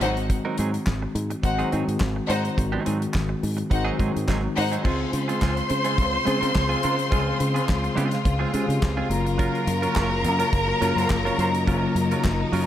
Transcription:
0.01 G#1 D#3 F#3 G#3 C4 D#4 F#4 G#4 C5 F#5, closed hi-hat
0.16 muted clean electric guitar stroke, closed hi-hat
0.30 muted clean electric guitar stroke, kick, closed hi-hat
0.45 F#3 C4 D#4 A#4
0.58 G#2 F#3 C4 D#4 G#4, closed hi-hat
0.73 muted clean electric guitar stroke, closed hi-hat
0.86 G#1, muted clean electric guitar stroke, kick, snare, clap
1.02 muted clean electric guitar stroke
1.15 G#2, closed hi-hat
1.30 muted clean electric guitar stroke, closed hi-hat
1.43 G#1 D#3 G#3 C4 D#4 F#4 C5 F#5, muted clean electric guitar stroke, kick, closed hi-hat
1.59 F#3 C4 D#4 G#4, closed hi-hat
1.72 G#2 D#3 F#3 G#3 C4 D#4 F#4 G#4, closed hi-hat
1.87 G#2, muted clean electric guitar stroke, closed hi-hat
2.00 G#1, muted clean electric guitar stroke, kick, snare, clap
2.16 muted clean electric guitar stroke
2.28 G#2 D#4 C5 F#5, closed hi-hat
2.43 muted clean electric guitar stroke, closed hi-hat
2.57 G#1 D#3 G#3 C4 F#4, muted clean electric guitar stroke, kick, closed hi-hat
2.72 F#3 C4 D#4 G#4
2.84 G#2 F#3 C4 D#4 G#4, closed hi-hat
3.00 muted clean electric guitar stroke, closed hi-hat
3.13 G#1, muted clean electric guitar stroke, kick, snare, clap
3.29 muted clean electric guitar stroke
3.43 G#2, open hi-hat
3.57 muted clean electric guitar stroke, closed hi-hat
3.70 G#1 D#3 G#3 C4 D#4 F#4 C5 F#5, muted clean electric guitar stroke, kick, closed hi-hat
3.85 F#3 C4 D#4 G#4
3.98 G#2 D#3 F#3 G#3 C4 D#4 G#4, kick, closed hi-hat
4.14 G#2, muted clean electric guitar stroke, closed hi-hat
4.28 G#1 F#3 C4 D#4 G#4, kick, snare, clap
4.44 muted clean electric guitar stroke
4.56 G#2 D#4 C5 F#5, muted clean electric guitar stroke, open hi-hat
4.72 F#3 C4 D#4 G#4, closed hi-hat
4.83 C#2 C#3 G#3 C4 F4 G#4 C5 C6, kick, crash
5.13 C#3, muted clean electric guitar stroke, closed hi-hat
5.28 G#3 C4 F4 G#4, closed hi-hat
5.41 C#2 G#3 C4 F4 G#4, kick, snare, clap
5.57 muted clean electric guitar stroke, closed hi-hat
5.69 C#3, muted clean electric guitar stroke, closed hi-hat
5.85 G#3 C4 F4 G#4, closed hi-hat
5.98 C#2, kick, closed hi-hat
6.13 muted clean electric guitar stroke
6.25 C#3 G#3 C4 F4 G#4, closed hi-hat
6.40 C#3 G#3 C4 F4 A#4, closed hi-hat
6.54 C#2, muted clean electric guitar stroke, kick, snare, clap
6.69 G#3 C4 F4 G#4, closed hi-hat
6.83 C#3 G#3 C4 F4 A#4, closed hi-hat
6.99 muted clean electric guitar stroke, closed hi-hat
7.11 C#2 C#3 G#3 C4 F4 G#4, kick, closed hi-hat
7.40 C#3, muted clean electric guitar stroke, closed hi-hat
7.54 G#3 C4 F4 G#4, closed hi-hat
7.69 C#2, kick, snare, clap
7.84 muted clean electric guitar stroke, closed hi-hat
7.95 C#3 G#3 C4 F4 G#4, closed hi-hat
8.11 muted clean electric guitar stroke, snare, closed hi-hat
8.24 C#2, muted clean electric guitar stroke, kick, closed hi-hat
8.39 G#3 C4 F4 G#4
8.53 C#3 G#3 C4 F4 G4 G#4, closed hi-hat
8.62 G#4
8.68 C#3, muted clean electric guitar stroke, closed hi-hat
8.82 C#2, muted clean electric guitar stroke, kick, snare, clap
8.97 G#3 C4 F4 G#4
9.09 F#1 C#3 F#3 A#3 F4 A#4 A#5, muted clean electric guitar stroke, closed hi-hat
9.25 muted clean electric guitar stroke, closed hi-hat
9.38 F#3 C#4 F4 A#4, kick, closed hi-hat
9.55 closed hi-hat
9.67 F#2, muted clean electric guitar stroke, closed hi-hat
9.82 F#3 C#4 F4 A#4, closed hi-hat
9.96 F#1 F#3 C#4 F4 A#4, kick, snare, clap
10.11 muted clean electric guitar stroke
10.24 F#2, muted clean electric guitar stroke, closed hi-hat
10.39 F#3 C#4 F4 A#4, closed hi-hat
10.53 F#1, kick, closed hi-hat
10.68 muted clean electric guitar stroke
10.81 F#2 C#3 F#3 A#3 C#4 F4 A#4, closed hi-hat
10.96 F#2 F#3 C#4 F4 C5, closed hi-hat
11.10 F#1, kick, snare, clap
11.25 F#3 C#4 F4 A#4, closed hi-hat
11.38 F#2 F#3 C#4 D#4 F4 C5, closed hi-hat
11.54 muted clean electric guitar stroke, closed hi-hat
11.66 F#1 C#3 F#3 A#3 C#4 F4 A#4, kick, closed hi-hat
11.95 F#2, muted clean electric guitar stroke, closed hi-hat
12.11 F#3 C#4 F4 A#4, closed hi-hat
12.24 F#1, kick, snare, clap
12.40 muted clean electric guitar stroke
12.52 F#2 F#3 C#4 F4 A#4, open hi-hat

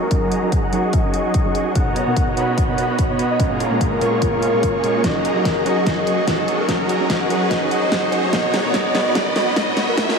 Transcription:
Already playing: riser
0.02 A#4
0.10 F#3 C#4 D#4 F#4 G#4 A#4 D#5 A#5, kick, closed hi-hat
0.32 closed hi-hat
0.42 F#3 C#4 D#4 A#4
0.52 kick, closed hi-hat
0.63 F#5
0.72 F#3 C#4 D#4 F#4 G#4 A#4 D#5 C#6, closed hi-hat
0.93 D#5, kick, closed hi-hat
1.04 F#3 C#4 D#4 A#4
1.14 closed hi-hat
1.34 kick, closed hi-hat
1.45 F#3 C#4 D#4 D#5
1.55 closed hi-hat
1.75 B2 B3 D#4 F#4 A#4 C#5 D#5 F#5 A#5, kick, closed hi-hat
1.96 closed hi-hat
2.06 B2 B3 D#4 A#4 F#5
2.17 kick, closed hi-hat
2.36 B2 B3 D#4 F#4 A#4 C#5 D#5 F#5 B5, closed hi-hat
2.58 kick, closed hi-hat
2.68 B2 B3 D#4 A#4 F#5
2.78 closed hi-hat
2.99 kick, closed hi-hat
3.09 B2 B3 D#4 C#5
3.19 closed hi-hat
3.31 D#5
3.39 A#2 G#3 A#3 C#4 F4 G#4 A#4 C#5 A#5, kick, closed hi-hat
3.60 closed hi-hat
3.71 A#2 G#3 C#4 A#4
3.81 kick, closed hi-hat
3.92 A#4
4.00 A#2 G#3 A#3 C#4 F4 G#4 A#4 C#5 C#6, closed hi-hat
4.22 A#4, kick, closed hi-hat
4.32 A#2 G#3 C#4 A#4
4.42 closed hi-hat
4.53 A#2 G#3 C#4 C#5
4.63 kick, closed hi-hat
4.83 A#2 G#3 C#4 D#5, closed hi-hat
5.03 F#3 C#4 D#4 F#4 G#4 A#4 D#5 A#5, kick, snare, closed hi-hat
5.25 closed hi-hat
5.35 F#3 C#4 D#4 A#4 D#5
5.45 kick, snare, closed hi-hat
5.65 F#3 C#4 D#4 F#4 G#4 A#4 D#5 C#6, closed hi-hat
5.86 kick, snare, closed hi-hat
5.97 F#3 C#4 D#4 A#4 D#5
6.07 closed hi-hat
6.28 kick, snare, closed hi-hat
6.38 F#3 C#4 D#4 D#5
6.48 closed hi-hat
6.60 A#4
6.68 F#3 C#4 D#4 F#4 G#4 A#4 D#5 A#5, kick, snare, closed hi-hat
6.89 closed hi-hat
7.00 F#3 C#4 D#4 A#4
7.10 kick, snare, closed hi-hat
7.21 F#5
7.29 F#3 C#4 D#4 F#4 G#4 A#4 D#5 C#6, closed hi-hat
7.51 D#5, kick, snare, closed hi-hat
7.61 F#3 C#4 D#4 A#4
7.71 closed hi-hat
7.92 kick, snare, closed hi-hat
8.02 F#3 C#4 D#4 D#5
8.12 closed hi-hat
8.32 B2 B3 D#4 F#4 A#4 C#5 D#5 A#5, kick, snare, closed hi-hat
8.54 snare, closed hi-hat
8.64 B2 B3 D#4 A#4 D#5
8.74 kick, snare, closed hi-hat
8.93 B2 B3 D#4 F#4 A#4 C#5 D#5 B5, snare, closed hi-hat
9.15 kick, snare, closed hi-hat
9.26 B2 B3 D#4 A#4 D#5
9.36 snare, closed hi-hat
9.56 kick, snare, closed hi-hat
9.67 B2 B3 D#4 C#5
9.77 snare, closed hi-hat
9.89 A#4
9.96 A#2 G#3 A#3 C#4 F4 G#4 A#4 C#5 A#5, kick, snare, closed hi-hat
10.09 snare

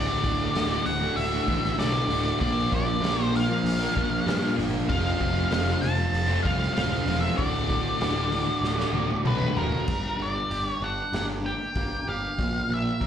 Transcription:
Already playing: D1 D2 A2 D3 A3 F#4 A4 D5 F#5 D6
0.22 D1 A2 D3 A3 F#4, kick, open hi-hat
0.53 D1 D2 A2 D3 A3 F#4, snare, open hi-hat
0.69 D3 A3 F#4
0.85 D1 A2 D3 A3 F#4 F#5, muted overdriven electric guitar stroke, open hi-hat
1.00 D3 A3 F#4, muted overdriven electric guitar stroke
1.16 D1 E5, open hi-hat
1.31 D3 A3 F#4
1.46 A1 A2 D3 A3 F#4, kick, open hi-hat
1.62 muted overdriven electric guitar stroke, snare
1.77 B1 D2 A2 D3 A3 F#4 D5, snare, open hi-hat
1.94 D3 A3 F#4
2.08 D1 A2 D3 A3 F#4, open hi-hat
2.23 D3 A3 F#4
2.37 A#2 F3 A#3 D4 F4 A#4 D5
2.41 A#1 F3 A#3 A#4 F5, kick, open hi-hat
2.70 A#3 D4 F4 A#4, kick, open hi-hat
2.75 D5
3.01 A#1 A#2 F3 A#3 D4 F4 A#4, open hi-hat
3.05 snare
3.16 A#3 D4 F4 A#4
3.23 C5
3.32 A#3 D4 F4 A#4, muted overdriven electric guitar stroke, open hi-hat
3.37 F5
3.48 A#3 D4 F4 A#4, muted overdriven electric guitar stroke
3.64 A#1, open hi-hat
3.79 A#3 D4 F4 A#4
3.94 A#1 A#3 D4 F4 A#4, kick, open hi-hat
4.10 muted overdriven electric guitar stroke
4.24 G2 A#2 F3 A#3 D4 F4 A#4, open hi-hat
4.29 snare
4.41 A#3 D4 F4 A#4
4.56 G1 A#3 D4 F4 A#4, open hi-hat
4.71 A#3 D4 F4 A#4
4.87 F1 F2 C3 F3 A3 C4 F4 C5 F5 A5, kick, open hi-hat
4.91 C6
5.19 F1 F3 A3 C4 F4, kick, open hi-hat
5.49 F1 F2 C3 F3 A3 C4 F4, snare, open hi-hat
5.64 F3 A3 C4 F4
5.81 F1 F3 A3 C4 F4 A5, muted overdriven electric guitar stroke, open hi-hat
5.96 F3 A3 C4 F4, muted overdriven electric guitar stroke
6.13 F1, open hi-hat
6.27 F3 A3 C4 F4
6.43 C2 F3 A3 C4 F4 F5, kick, open hi-hat
6.58 muted overdriven electric guitar stroke
6.62 snare
6.74 D1 F2 C3 F3 A3 C4 F4 F5, open hi-hat
6.78 snare
6.89 F3 A3 C4 F4
7.06 E1 F3 A3 C4 F4, open hi-hat
7.21 F3 A3 C4 F4 E5
7.37 D1 D2 A2 D3 A3 F#4 D5 F#5 D6, kick, open hi-hat
7.68 A2 D3 A3 F#4, kick, open hi-hat
8.00 D1 D2 A2 D3 A3 F#4, snare, open hi-hat
8.15 D3 A3 F#4
8.30 A2 D3 A3 F#4, muted overdriven electric guitar stroke, open hi-hat
8.45 D3 A3 F#4, muted overdriven electric guitar stroke
8.61 D1, snare
8.77 D3 A3 F#4, snare
8.93 D1 A2 D3 A3 F#4, high tom
9.10 muted overdriven electric guitar stroke, high tom
9.24 B1 D2 A2 D3 A3 F#4 B4, mid tom
9.39 D3 A3 F#4, mid tom
9.55 D1 A2 D3 A3 F#4 A#4, floor tom
9.71 D3 A3 F#4, floor tom
9.88 G1 G2, kick, crash
10.18 G1 D5
10.50 G1 G4, open hi-hat
10.67 C#5
10.81 G1 D4 F#5
11.13 G1 A#3 F#5, snare, open hi-hat
11.45 G4 G5
11.75 G1 A#3, kick, open hi-hat
12.07 G1 G4 F5
12.38 A#1 A#2, kick, open hi-hat
12.69 A#1
12.73 E5
13.00 A#1 A#4, kick, open hi-hat

